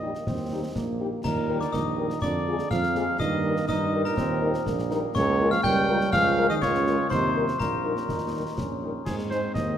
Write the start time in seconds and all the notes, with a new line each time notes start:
Already playing: A#1 G3 D#5
0.02 G3 D#4 G4
0.15 A#3, snare
0.26 D#2 C4, concert bass drum, snare
0.51 G3 D#4 G4
0.75 A#1 A#3, concert bass drum, snare
1.00 G3 D#4 G4
1.24 D#2 A#2 D#4 A#4 A#5, concert bass drum, snare, crash
1.49 G3 G4 A#4
1.61 D3 D5 D6, snare
1.72 A#1 D#3 D#5 D#6, concert bass drum, snare
1.98 G3 G4 A#4
2.10 snare
2.21 F2 D3 D4 D5 D6, concert bass drum, snare
2.46 G#3 F4 G#4
2.59 snare
2.70 F2 F3 C4 F5 F6, concert bass drum, snare
2.83 snare
2.95 G#3 F4 G#4, snare
3.19 G2 D#3 A#3 D#5 D#6, concert bass drum, snare
3.44 G3 D#4 A#4
3.56 snare
3.68 G2 D#3 D#4 D#5 D#6, concert bass drum, snare
3.93 G3 D#4 A#4
4.05 A#2 A#4 A#5, snare
4.17 D#2 C4, concert bass drum, snare
4.42 G3 D#4 A#4
4.54 snare
4.65 A#1 A#3, concert bass drum, snare
4.79 snare
4.91 G3 D#4 A#4, snare
5.15 C#2 C#3 C#5 C#6, concert bass drum, snare, crash
5.40 G#3 F4 A#4
5.51 F3 F5 F6, snare
5.63 C#2 G3 G5 G6, concert bass drum, snare
5.89 G#3 F4 A#4
6.01 snare
6.13 C#2 F3 C#4 F5 F6, concert bass drum, snare
6.37 G#3 F4 A#4
6.50 D#3 D#5 D#6, snare
6.61 C#2 C#3 F4 C#5 C#6, concert bass drum, snare
6.74 snare
6.86 G#3 F4 A#4, snare
7.10 D#2 C3 D#4 C5 C6, concert bass drum, snare
7.35 G3 D#4 A#4
7.48 snare
7.59 A#1 A#2 A#3 A#4 A#5, concert bass drum, snare
7.84 G3 D#4 A#4
7.97 C#4, snare
8.08 D#2 D#4, concert bass drum, snare
8.33 G3 D#4 A#4
8.57 A#1 C#4, concert bass drum, snare
8.82 G3 D#4 A#4
9.05 G#2 G#3 C4 G#4, concert bass drum, snare, crash
9.19 snare
9.30 G#3 D#4 C5, snare
9.54 D#2 D#5, concert bass drum, snare